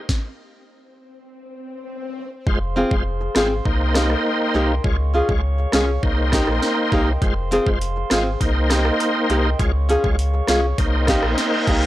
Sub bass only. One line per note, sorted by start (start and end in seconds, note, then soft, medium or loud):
2.47 2.84 F1 loud
2.91 3.29 F1 loud
3.36 3.61 G#1 medium
3.65 4.15 C2 loud
4.55 4.80 C2 loud
4.84 5.22 C#2 loud
5.29 5.66 C#2 loud
5.73 5.98 C2 medium
6.03 6.41 C2 loud
6.48 6.60 A#1 loud
6.92 7.17 C2 loud
7.22 7.59 F1 loud
7.66 8.04 F1 loud
8.11 8.36 G#1 medium
8.41 8.91 C2 loud
9.30 9.55 C2 loud
9.59 9.97 C#2 loud
10.04 10.41 C#2 loud
10.49 10.74 C2 medium
10.78 11.16 C2 loud
11.23 11.35 A#1 medium
11.67 11.86 C2 loud